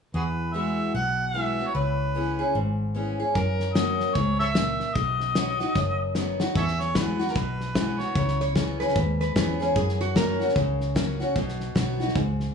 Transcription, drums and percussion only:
3.35 kick, snare
3.60 snare
3.75 snare, hi-hat pedal
4.00 snare
4.15 kick, snare
4.40 snare
4.55 snare, hi-hat pedal
4.80 snare
4.95 kick, snare
5.20 snare
5.35 snare, hi-hat pedal
5.60 snare
5.75 kick, snare
6.15 snare, hi-hat pedal
6.40 snare
6.55 kick, snare
6.68 snare
6.80 snare
6.95 kick, snare, hi-hat pedal
7.20 snare
7.28 snare
7.36 kick, snare
7.61 snare
7.75 kick, snare, hi-hat pedal
8.00 snare
8.15 kick, snare
8.28 snare
8.40 snare
8.56 kick, snare, hi-hat pedal
8.80 snare
8.88 snare
8.96 kick, snare
9.21 snare
9.36 kick, snare, hi-hat pedal
9.61 snare
9.76 kick, snare
9.89 snare
10.01 snare
10.16 kick, snare, hi-hat pedal
10.41 snare
10.48 snare
10.56 kick, snare
10.81 snare
10.96 kick, snare, hi-hat pedal
11.21 snare
11.36 kick, snare
11.49 snare
11.60 snare
11.76 kick, snare, hi-hat pedal
12.00 snare
12.08 snare
12.15 kick, snare
12.40 snare

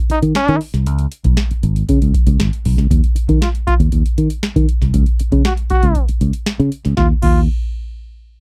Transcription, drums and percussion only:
0.10 closed hi-hat
0.23 closed hi-hat
0.35 snare, closed hi-hat
0.48 closed hi-hat
0.61 open hi-hat
0.74 snare, closed hi-hat
0.86 closed hi-hat
0.99 closed hi-hat
1.12 closed hi-hat
1.24 kick, closed hi-hat
1.37 snare, closed hi-hat
1.51 closed hi-hat
1.63 closed hi-hat
1.76 closed hi-hat
1.89 kick, closed hi-hat
2.02 closed hi-hat
2.14 kick, closed hi-hat
2.27 closed hi-hat
2.40 snare, closed hi-hat
2.53 closed hi-hat
2.65 kick, open hi-hat
2.78 snare, closed hi-hat
2.91 kick, closed hi-hat
3.04 closed hi-hat
3.16 closed hi-hat
3.29 kick, closed hi-hat
3.42 snare, closed hi-hat
3.55 closed hi-hat
3.67 kick, closed hi-hat
3.80 closed hi-hat
3.92 kick, closed hi-hat
4.06 closed hi-hat
4.18 closed hi-hat
4.30 closed hi-hat
4.43 snare, closed hi-hat
4.56 kick, closed hi-hat
4.69 closed hi-hat
4.82 snare, closed hi-hat
4.94 kick, closed hi-hat
5.06 closed hi-hat
5.20 closed hi-hat
5.32 kick, closed hi-hat
5.45 snare, closed hi-hat
5.57 closed hi-hat
5.70 kick, closed hi-hat
5.83 closed hi-hat
5.95 kick, closed hi-hat
6.09 closed hi-hat
6.21 closed hi-hat
6.33 closed hi-hat
6.46 snare, closed hi-hat
6.60 closed hi-hat
6.72 closed hi-hat
6.85 snare, closed hi-hat
6.97 kick, snare
7.22 kick, crash

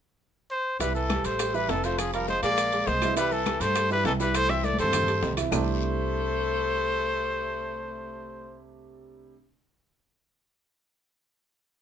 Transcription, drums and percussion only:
0.80 high bongo, high conga, high timbale, long guiro, maracas
0.95 high conga, maracas
1.10 high bongo, high conga, high timbale, short guiro, claves, maracas
1.24 high bongo, high conga, high timbale, short guiro, maracas
1.39 high bongo, high conga, high timbale, long guiro, claves, maracas
1.54 high bongo, high conga, maracas
1.69 high bongo, low bongo, high conga, high timbale, low timbale, short guiro, maracas
1.84 high bongo, high conga, short guiro, maracas
1.99 high bongo, high conga, high timbale, long guiro, claves, maracas
2.13 high bongo, high conga, high timbale, maracas
2.28 high bongo, high conga, short guiro, maracas
2.43 high conga, high timbale, short guiro, maracas
2.57 high bongo, high conga, high timbale, long guiro, claves, maracas
2.72 high bongo, high conga, high timbale, maracas
2.87 high bongo, low bongo, high conga, short guiro, maracas
3.02 high bongo, high conga, high timbale, short guiro, claves, maracas
3.16 high bongo, high timbale, long guiro, maracas
3.31 high conga, maracas
3.46 high bongo, high conga, high timbale, short guiro, claves, maracas
3.61 high bongo, high conga, high timbale, short guiro, maracas
3.75 high bongo, high conga, high timbale, long guiro, claves, maracas
3.90 high bongo, high conga, maracas
4.05 high bongo, low bongo, high conga, high timbale, low timbale, short guiro, maracas
4.20 high bongo, high conga, short guiro, maracas
4.34 high bongo, high conga, high timbale, claves, maracas
4.49 high bongo, high conga, high timbale, maracas
4.64 high bongo, high conga, short guiro, maracas
4.74 high conga
4.79 high timbale, short guiro, maracas
4.84 low conga
4.93 high bongo, low conga, high timbale, long guiro, claves, maracas
5.03 low conga
5.08 high bongo, high timbale, maracas
5.23 high bongo, low bongo, low timbale, short guiro, maracas
5.33 low conga
5.37 high bongo, high timbale, short guiro, claves, maracas
5.42 low conga
5.52 low bongo, low conga, low timbale, long guiro, claves, maracas

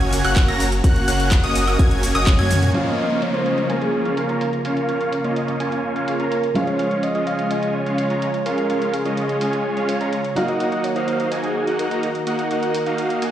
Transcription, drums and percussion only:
0.01 closed hi-hat, shaker
0.13 open hi-hat, ride, shaker
0.25 closed hi-hat, high woodblock, shaker
0.36 kick, clap, closed hi-hat, shaker
0.48 closed hi-hat, high woodblock, shaker
0.60 open hi-hat, ride, shaker
0.72 closed hi-hat, shaker
0.84 kick, closed hi-hat, shaker
0.96 closed hi-hat, shaker
1.08 open hi-hat, ride, shaker
1.20 closed hi-hat, shaker
1.31 kick, clap, closed hi-hat, shaker
1.44 closed hi-hat, shaker
1.55 open hi-hat, ride, shaker
1.67 closed hi-hat, high woodblock, shaker
1.79 kick, closed hi-hat, shaker
1.91 closed hi-hat, shaker
2.03 open hi-hat, ride, shaker
2.15 closed hi-hat, high woodblock, shaker
2.27 kick, clap, closed hi-hat, high tom, shaker
2.39 closed hi-hat, high tom, high woodblock, shaker
2.51 open hi-hat, mid tom, ride, shaker
2.63 closed hi-hat, mid tom, shaker
2.74 closed hi-hat
2.86 closed hi-hat
2.98 closed hi-hat
3.10 closed hi-hat
3.22 closed hi-hat
3.34 closed hi-hat
3.46 closed hi-hat
3.58 closed hi-hat
3.70 closed hi-hat
3.82 closed hi-hat
4.05 closed hi-hat
4.17 closed hi-hat
4.29 closed hi-hat
4.41 closed hi-hat
4.53 closed hi-hat
4.65 closed hi-hat
4.77 closed hi-hat
4.89 closed hi-hat
5.01 closed hi-hat
5.13 closed hi-hat
5.24 closed hi-hat
5.36 closed hi-hat
5.48 closed hi-hat
5.60 closed hi-hat
5.72 closed hi-hat
5.96 closed hi-hat
6.08 closed hi-hat
6.20 closed hi-hat
6.32 closed hi-hat
6.44 closed hi-hat
6.55 closed hi-hat
6.67 closed hi-hat
6.79 closed hi-hat
6.91 closed hi-hat
7.03 closed hi-hat
7.15 closed hi-hat
7.27 closed hi-hat
7.39 closed hi-hat
7.51 closed hi-hat
7.63 closed hi-hat
7.86 closed hi-hat
7.98 closed hi-hat
8.10 closed hi-hat
8.22 closed hi-hat
8.34 closed hi-hat
8.46 closed hi-hat
8.58 closed hi-hat
8.70 closed hi-hat
8.82 closed hi-hat
8.94 closed hi-hat
9.05 closed hi-hat
9.17 closed hi-hat
9.29 closed hi-hat
9.41 closed hi-hat
9.53 closed hi-hat
9.77 closed hi-hat
9.89 closed hi-hat
10.01 closed hi-hat
10.13 closed hi-hat
10.25 closed hi-hat
10.36 closed hi-hat
10.48 closed hi-hat
10.60 closed hi-hat
10.72 closed hi-hat
10.84 closed hi-hat
10.96 closed hi-hat
11.08 closed hi-hat
11.20 closed hi-hat
11.32 closed hi-hat
11.44 closed hi-hat
11.67 closed hi-hat
11.79 closed hi-hat
11.91 closed hi-hat
12.03 closed hi-hat
12.15 closed hi-hat
12.27 closed hi-hat
12.39 closed hi-hat
12.51 closed hi-hat
12.63 closed hi-hat
12.75 closed hi-hat
12.86 closed hi-hat
12.98 closed hi-hat
13.10 closed hi-hat
13.22 closed hi-hat

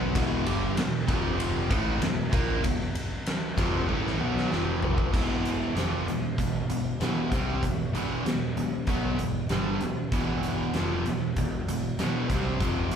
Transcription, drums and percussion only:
0.15 kick, ride
0.46 ride
0.77 snare, ride
1.08 kick, ride
1.40 ride
1.71 kick, ride
2.02 snare, ride
2.33 kick, ride
2.64 kick, ride
2.81 snare
2.95 ride
3.26 snare, ride
3.58 kick, ride
3.89 kick
4.07 snare
4.37 snare
4.52 snare
4.83 floor tom
4.98 kick
5.14 kick, crash
5.45 closed hi-hat
5.77 snare, closed hi-hat
6.08 snare, closed hi-hat
6.38 kick, closed hi-hat
6.70 closed hi-hat
7.01 snare, closed hi-hat
7.32 kick, closed hi-hat
7.63 kick, closed hi-hat
7.95 closed hi-hat
8.26 snare, closed hi-hat
8.57 closed hi-hat
8.87 kick, closed hi-hat
9.19 closed hi-hat
9.49 snare, closed hi-hat
9.81 closed hi-hat
10.12 kick, closed hi-hat
10.43 closed hi-hat
10.74 snare, closed hi-hat
11.06 snare, closed hi-hat
11.36 kick, closed hi-hat
11.69 closed hi-hat
11.99 snare, closed hi-hat
12.30 kick, closed hi-hat
12.61 kick, closed hi-hat
12.91 closed hi-hat

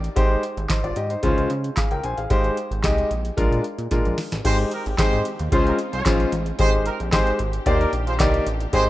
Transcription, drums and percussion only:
0.04 closed hi-hat
0.16 kick, closed hi-hat
0.43 closed hi-hat
0.57 closed hi-hat
0.70 kick, snare, clap, closed hi-hat
0.84 closed hi-hat
0.96 closed hi-hat
1.10 closed hi-hat
1.23 kick, closed hi-hat
1.38 closed hi-hat
1.50 closed hi-hat
1.64 closed hi-hat
1.76 kick, snare, clap, closed hi-hat
1.91 closed hi-hat
2.04 closed hi-hat
2.18 closed hi-hat
2.30 kick, closed hi-hat
2.44 closed hi-hat
2.57 closed hi-hat
2.72 closed hi-hat
2.84 kick, snare, clap, closed hi-hat
2.98 closed hi-hat
3.11 closed hi-hat
3.25 closed hi-hat
3.38 kick, closed hi-hat
3.52 closed hi-hat
3.64 closed hi-hat
3.79 closed hi-hat
3.91 kick, snare, closed hi-hat
4.05 closed hi-hat
4.18 snare, open hi-hat
4.32 snare, closed hi-hat
4.45 kick, closed hi-hat, crash
4.71 closed hi-hat
4.86 closed hi-hat
4.98 kick, snare, clap, closed hi-hat
5.13 closed hi-hat
5.25 closed hi-hat
5.39 closed hi-hat
5.52 kick, closed hi-hat
5.67 closed hi-hat
5.79 closed hi-hat
5.93 closed hi-hat
6.05 kick, snare, clap, closed hi-hat
6.20 closed hi-hat
6.32 closed hi-hat
6.46 closed hi-hat
6.59 kick, closed hi-hat
6.86 closed hi-hat
7.00 closed hi-hat
7.12 kick, snare, clap, closed hi-hat
7.27 closed hi-hat
7.39 closed hi-hat
7.53 closed hi-hat
7.66 kick, closed hi-hat
7.81 closed hi-hat
7.93 closed hi-hat
8.07 closed hi-hat
8.19 kick, snare, clap, closed hi-hat
8.34 closed hi-hat
8.47 closed hi-hat
8.60 closed hi-hat
8.73 kick, closed hi-hat

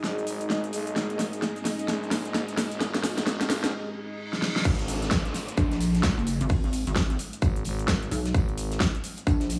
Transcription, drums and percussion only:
0.04 snare, shaker
0.18 shaker
0.27 open hi-hat, shaker
0.41 closed hi-hat, shaker
0.50 snare, shaker
0.64 closed hi-hat, shaker
0.73 open hi-hat, shaker
0.87 closed hi-hat, shaker
0.96 snare, shaker
1.10 closed hi-hat
1.19 snare, open hi-hat, shaker
1.33 closed hi-hat, shaker
1.42 snare, shaker
1.56 closed hi-hat, shaker
1.65 snare, open hi-hat, shaker
1.79 closed hi-hat, shaker
1.88 snare, shaker
2.03 shaker
2.11 snare, open hi-hat, shaker
2.25 closed hi-hat, shaker
2.34 snare, shaker
2.48 closed hi-hat, shaker
2.57 snare, open hi-hat, shaker
2.71 closed hi-hat, shaker
2.81 snare, shaker
2.95 snare, closed hi-hat
3.04 snare, open hi-hat, shaker
3.18 snare, closed hi-hat, shaker
3.27 snare, shaker
3.41 snare, closed hi-hat, shaker
3.50 snare, open hi-hat, shaker
3.64 snare, closed hi-hat, shaker
4.33 snare
4.42 snare
4.56 snare
4.65 kick, crash, tambourine, shaker
4.79 closed hi-hat
4.88 open hi-hat, tambourine, shaker
5.02 snare, closed hi-hat, shaker
5.11 kick, snare, tambourine, shaker
5.25 closed hi-hat, shaker
5.34 snare, open hi-hat, tambourine, shaker
5.48 closed hi-hat, shaker
5.57 kick, tambourine, shaker
5.71 snare, closed hi-hat, shaker
5.80 snare, open hi-hat, tambourine, shaker
5.95 snare, closed hi-hat, shaker
6.03 kick, snare, tambourine, shaker
6.18 shaker
6.27 open hi-hat, tambourine, shaker
6.41 closed hi-hat, shaker
6.49 kick, open hi-hat, shaker
6.64 closed hi-hat
6.73 open hi-hat, tambourine, shaker
6.87 closed hi-hat, shaker
6.96 kick, snare, tambourine, shaker
7.10 closed hi-hat, shaker
7.19 open hi-hat, tambourine, shaker
7.33 closed hi-hat, shaker
7.42 kick, tambourine, shaker
7.56 closed hi-hat, shaker
7.65 open hi-hat, tambourine, shaker
7.79 closed hi-hat, shaker
7.88 kick, snare, tambourine, shaker
8.02 closed hi-hat, shaker
8.11 open hi-hat, tambourine, shaker
8.26 snare, closed hi-hat, shaker
8.35 kick, tambourine, shaker
8.49 closed hi-hat
8.58 open hi-hat, tambourine, shaker
8.72 snare, closed hi-hat, shaker
8.80 kick, snare, tambourine, shaker
8.95 closed hi-hat, shaker
9.04 open hi-hat, tambourine, shaker
9.17 closed hi-hat, shaker
9.27 kick, tambourine, shaker
9.40 snare, closed hi-hat, shaker
9.49 snare, open hi-hat, tambourine, shaker

